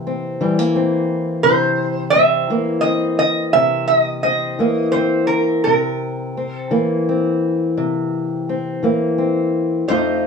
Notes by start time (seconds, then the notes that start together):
Already playing: C3 E3 A#3 E4
0.07 C4
0.41 E3 G3
0.59 A#3
0.76 C4
1.43 C3 C5
2.10 E5
2.15 C4
2.50 E3 A#3
2.81 D#5
2.85 C4
3.19 D#5
3.53 C3 E5
3.88 D#5
4.23 C4 D#5
4.59 E3 A#3
4.92 C4 C5
5.27 A#4
5.64 C3 A#4
6.37 C4
6.53 A4
6.71 E3 A#3
7.09 C4
7.77 C3
8.49 C4
8.83 E3 A#3
9.18 C4
9.88 F2 F3 A3 D#4 F4 C5